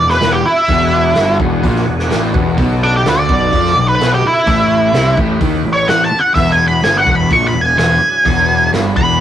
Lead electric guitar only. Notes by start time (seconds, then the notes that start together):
0.11 B4
0.32 G4
0.45 E4
2.83 D4
2.96 G4
3.08 B4
3.19 D5
3.88 B4
4.14 G4
4.27 E4
5.73 C#5
5.88 F#5
6.04 A5
6.19 F#5
6.34 E5
6.52 G#5
6.68 B5
6.84 G#5
6.98 F#5
7.15 B5
7.32 C#6
7.47 B5
7.61 G#5
7.79 G#5
8.97 B5